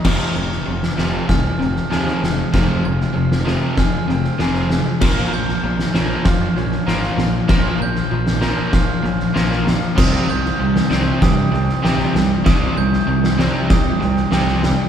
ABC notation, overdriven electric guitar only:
X:1
M:4/4
L:1/8
Q:1/4=97
K:Fm
V:1 name="Overdriven electric guitar" clef=bass
[F,,C,F,] [F,,C,] [F,,C,] [F,,C,F,] [F,,C,] [F,,C,] [F,,C,F,] [F,,C,] | [F,,C,F,] [F,,C,] [F,,C,] [F,,C,F,] [F,,C,] [F,,C,] [F,,C,F,] [F,,C,] | [B,,F,B,] [B,,F,] [B,,F,] [B,,F,B,] [B,,F,] [B,,F,] [B,,F,B,] [B,,F,] | [B,,F,B,] [B,,F,] [B,,F,] [B,,F,B,] [B,,F,] [B,,F,] [B,,F,B,] [B,,F,] |
[C,G,C] [C,G,] [C,G,] [C,G,C] [C,G,] [C,G,] [C,G,C] [C,G,] | [C,G,C] [C,G,] [C,G,] [C,G,C] [C,G,] [C,G,] [C,G,C] [C,G,] |]